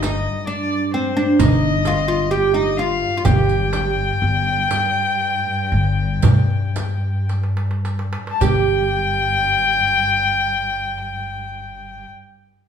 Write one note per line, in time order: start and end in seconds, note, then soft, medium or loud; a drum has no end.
0.00 0.26 G1 loud
0.00 8.38 G2 medium
0.00 0.46 D#4 medium
0.00 0.45 D#5 medium
0.00 riq soft
0.00 darbuka tek medium
0.00 frame drum medium
0.47 0.94 D4 medium
0.47 0.90 D5 medium
0.47 riq soft
0.94 1.15 C4 medium
0.94 1.41 C5 medium
1.17 1.39 D4 medium
1.39 3.03 G1 medium
1.39 1.87 D#4 medium
1.39 2.33 D#5 medium
1.39 riq medium
1.39 darbuka dum medium
1.39 frame drum medium
1.85 2.07 F4 medium
1.85 riq soft
1.85 darbuka tek medium
1.85 frame drum medium
2.08 2.31 F4 medium
2.31 2.54 G4 medium
2.31 2.55 G5 medium
2.31 riq soft
2.54 2.79 D#4 medium
2.54 2.79 D#5 medium
2.77 3.16 F4 medium
2.77 3.26 F5 medium
2.77 riq soft
2.77 darbuka ka soft
3.17 3.24 F4 medium
3.25 4.10 G1 medium
3.25 7.25 G4 medium
3.25 7.29 G5 medium
3.25 riq medium
3.25 darbuka dum medium
3.25 frame drum medium
3.49 riq soft
3.73 riq soft
3.73 darbuka tek medium
3.73 frame drum medium
4.22 4.65 G1 medium
4.22 darbuka ka soft
4.71 riq soft
4.71 darbuka tek medium
4.71 frame drum medium
5.21 darbuka ka soft
5.72 6.17 G1 medium
6.22 8.14 G2 medium
6.22 riq medium
6.22 frame drum medium
6.22 darbuka dum loud
6.76 riq soft
6.76 darbuka tek medium
6.76 frame drum medium
7.29 riq soft
7.29 darbuka tek medium
7.44 darbuka ka medium
7.57 darbuka tek medium
7.71 darbuka ka medium
7.85 riq soft
7.85 darbuka tek medium
7.99 darbuka ka medium
8.13 darbuka tek medium
8.27 8.41 A5 medium
8.27 darbuka ka medium
8.40 12.04 G1 medium
8.40 12.03 G2 medium
8.40 12.04 G4 medium
8.40 12.07 G5 loud
8.40 riq medium
8.40 frame drum medium
8.40 darbuka dum medium